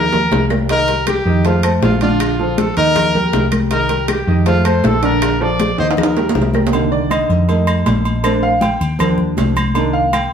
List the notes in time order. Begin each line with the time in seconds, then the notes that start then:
Already playing: D#2 A#4
0.12 G3 G4 A#4, high conga, low conga, low timbale
0.31 C2, high bongo, low bongo, high conga, low timbale
0.50 G3 G4 A#4, high bongo, high conga, low timbale, claves
0.69 D#3 D#4 A#4 D#5, high bongo, high conga, high timbale
0.88 G3 G4 A#4, high conga, high timbale
1.07 G4, high bongo, high conga, high timbale, low timbale, claves
1.25 F2 D#3 D#4 D#5, high conga
1.45 A3 F4 A4 C5, high bongo, high conga, high timbale
1.63 A3 A4 C5, high conga, high timbale, claves
1.82 A#1 F4, high bongo, low bongo, high conga, low timbale
2.01 D3 D4 F4 D5, high conga, high timbale
2.20 high bongo, high conga, high timbale, claves
2.39 F3 F4 A4, high bongo, high conga
2.58 A4, high bongo, high conga, high timbale, low timbale
2.77 D#2 D#3 D#4 A#4 D#5, high conga, high timbale
2.96 high bongo, high conga, low conga, high timbale, claves
3.14 G3 G4 A#4, high bongo, high conga, low conga
3.33 C2, high bongo, low bongo, high conga, high timbale, low timbale
3.52 G3 G4 A#4, high bongo, high conga, high timbale, claves
3.71 D#3 D#4 A#4 D#5, high bongo, high conga, high timbale
3.89 G3 G4 A#4, high conga, high timbale
4.08 G4, high bongo, high conga, high timbale, low timbale, claves
4.27 F2 D#3 D#4 D#5, high conga
4.46 A3 F4 A4 C5, high bongo, high conga, high timbale
4.65 A3 A4 C5, high conga, high timbale, claves
4.84 A#1 A4, high bongo, low bongo, high conga, low timbale
5.02 D3 D4 A#4 D5, high timbale
5.22 high bongo, high conga, high timbale, claves
5.41 F3 F4 A4 D5, high bongo, high conga
5.60 high bongo, high conga, high timbale, low timbale
5.78 D#2 D#3 D#4 C5 D#5, high conga, high timbale
5.91 high timbale
5.97 A#4, high bongo, high conga, low conga, claves
6.03 high timbale
6.16 G3 G4 A#4, high bongo, high conga, low timbale
6.29 low timbale
6.35 C2, high bongo, low bongo, high conga
6.42 low timbale
6.54 G3 G4 A#4, high bongo, high conga, low timbale, claves
6.67 low timbale
6.72 D3 D#3 A#3, cowbell, high conga, low agogo
6.91 D5, high conga
7.10 D#5, cowbell, high conga, low timbale, low agogo, claves
7.29 F2, cowbell, high conga
7.48 G3 A3 D#4, cowbell, high conga, low agogo
7.67 high conga, low agogo, claves
7.86 A#1, cowbell, high conga, low timbale, low agogo
8.05 low agogo
8.23 A3 C4 D4, cowbell, high conga, low agogo, claves
8.43 F5, high conga
8.61 G5, cowbell, high conga, low timbale, low agogo
8.80 D#2, high conga, low agogo
8.99 F3 G3 D4, cowbell, high conga, low conga, low agogo, claves
9.18 high conga, low conga
9.37 C2, cowbell, high conga, low timbale, low agogo
9.56 high conga, low agogo, claves
9.74 D#3 A#3 D4, cowbell, low agogo
9.93 F5, high conga
10.13 G5, cowbell, high conga, low timbale, low agogo, claves